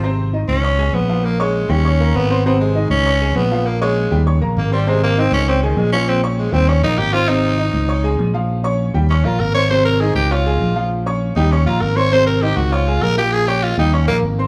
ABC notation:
X:1
M:4/4
L:1/8
Q:1/4=199
K:Ab
V:1 name="Grand piano"
[C,Cc]2 [E,Ee]2 [Ddd'] [A,Aa]2 [F,Ff]- | [F,Ff] [Ddd']2 [G,Gg] [Ddd'] [B,Bb]2 [Ccc'] | [C,Cc]2 [E,Ee]2 [Ddd'] [A,Aa]2 [F,Ff]- | [F,Ff] [Ddd']2 [G,Gg] [Ddd'] [B,Bb]2 [Ccc'] |
[C,Cc]2 [E,Ee]2 [Ddd'] [A,Aa]2 [F,Ff]- | [F,Ff] [Ddd']2 [G,Gg] [Ddd'] [B,Bb]2 [Ccc'] | [C,Cc]2 [E,Ee]2 [Ddd'] [A,Aa]2 [F,Ff]- | [F,Ff] [Ddd']2 [G,Gg] [Ddd'] [B,Bb]2 [Ccc'] |
[C,Cc]2 [E,Ee]2 [Ddd'] [A,Aa]2 [F,Ff]- | [F,Ff] [Ddd']2 [G,Gg] [Ddd'] [B,Bb]2 [Ccc'] | [C,Cc]2 [E,Ee]2 [Ddd'] [A,Aa]2 [F,Ff]- | [F,Ff] [Ddd']2 [G,Gg] [Ddd'] [B,Bb]2 [Ccc'] |]
V:2 name="Tenor saxophone"
z3 D3 _C2 | B, A,2 D3 _C2 | _C A,2 D3 C2 | B, A,3 z2 B, G, |
A, B, C D C E, A, D | C F, A, C D E G F | E6 z2 | z4 D F B d |
c B A G F4 | z3 E D F B d | c B G _G F2 B =G | A G F E D B, z2 |]
V:3 name="Fingered electric bass" clef=bass
A,,,3 D,,3 B,,,2- | B,,,3 E,,3 A,,,2- | A,,,3 D,,3 B,,,2- | B,,,3 E,,2 B,,, A,,,2- |
A,,,3 D,,3 B,,,2- | B,,,3 E,,2 B,,, A,,,2- | A,,,3 D,,3 B,,,2- | B,,,3 E,,2 B,,, A,,,2- |
A,,,3 D,,3 B,,,2- | B,,,3 E,,2 B,,, A,,,2- | A,,,3 D,,3 B,,,2- | B,,,3 E,,2 B,,, A,,,2 |]